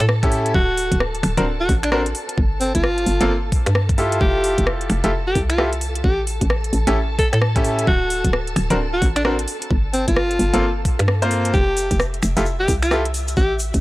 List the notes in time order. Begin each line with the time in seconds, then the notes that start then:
Already playing: A4 A5
0.00 A2, finger snap, closed hi-hat
0.09 cross-stick
0.23 C#4 E4 G4 A4, kick, closed hi-hat
0.32 open hi-hat
0.46 closed hi-hat
0.54 D1 F#4, kick
0.77 open hi-hat
0.92 D1, kick, closed hi-hat
1.00 cross-stick
1.15 closed hi-hat
1.23 D1, finger snap, open hi-hat
1.37 D1 C4 D4 F#4 A#4, closed hi-hat
1.60 F#4
1.69 A1, kick, open hi-hat
1.83 D4, finger snap, closed hi-hat
1.92 C4 D4 F#4 A#4, cross-stick
2.06 closed hi-hat
2.15 open hi-hat
2.29 closed hi-hat
2.38 G1, kick
2.60 C4, open hi-hat
2.75 G1 F4, kick, closed hi-hat
2.84 cross-stick
2.98 closed hi-hat
3.06 G1, open hi-hat
3.21 G1 A#3 C4 F4 A4, closed hi-hat
3.52 kick, open hi-hat
3.66 G2, finger snap, closed hi-hat
3.75 cross-stick
3.89 kick, closed hi-hat
3.98 E4 F4 G4 A4, open hi-hat
4.12 closed hi-hat
4.21 F1 G4 A4 A5, kick
4.44 open hi-hat
4.58 F1, kick, closed hi-hat
4.67 cross-stick
4.81 closed hi-hat
4.90 F1, finger snap, open hi-hat
5.04 F1 E4 F4 G4 A4, closed hi-hat
5.27 G4
5.35 C2, kick, open hi-hat
5.50 F4, finger snap, closed hi-hat
5.58 E4 F4 G4 A4, cross-stick
5.73 closed hi-hat
5.81 open hi-hat
5.95 closed hi-hat
6.04 A1 G4, kick
6.27 open hi-hat
6.41 A1, kick, closed hi-hat
6.50 cross-stick
6.64 closed hi-hat
6.73 A1, open hi-hat
6.87 A1 C#4 E4 G4 A4, closed hi-hat
7.19 A4, kick, open hi-hat
7.33 A2 A4, finger snap, closed hi-hat
7.42 cross-stick
7.56 C#4 E4 G4 A4, kick, closed hi-hat
7.64 open hi-hat
7.79 closed hi-hat
7.87 D1 F#4, kick
8.10 open hi-hat
8.24 D1, kick, closed hi-hat
8.33 cross-stick
8.47 closed hi-hat
8.56 D1, finger snap, open hi-hat
8.70 D1 C4 D4 F#4 A#4, closed hi-hat
8.93 F#4
9.02 A1, kick, open hi-hat
9.16 D4, finger snap, closed hi-hat
9.25 C4 D4 F#4 A#4, cross-stick
9.39 closed hi-hat
9.48 open hi-hat
9.62 closed hi-hat
9.71 G1, kick
9.93 C4, open hi-hat
10.08 G1 F4, kick, closed hi-hat
10.16 cross-stick
10.31 closed hi-hat
10.39 G1, open hi-hat
10.53 G1 A#3 C4 F4 A4, closed hi-hat
10.85 kick, open hi-hat
10.99 G2, finger snap, closed hi-hat
11.08 cross-stick
11.22 A#3 C4 F4 C5, closed hi-hat
11.31 open hi-hat
11.45 closed hi-hat
11.54 F1 G4 E5, kick, shaker
11.77 open hi-hat, shaker
11.91 F1, kick, closed hi-hat, shaker
11.99 cross-stick, shaker
12.14 closed hi-hat
12.22 F1, finger snap, open hi-hat, shaker
12.37 F1 E4 F4 G4 A4, closed hi-hat, shaker
12.46 shaker
12.59 G4
12.68 C2, kick, open hi-hat, shaker
12.82 F4, finger snap, closed hi-hat, shaker
12.91 E4 F4 G4 A4, cross-stick, shaker
13.05 closed hi-hat
13.14 open hi-hat, shaker
13.28 closed hi-hat, shaker
13.37 A1 G4, kick, shaker
13.59 open hi-hat, shaker
13.74 A1, kick, closed hi-hat, shaker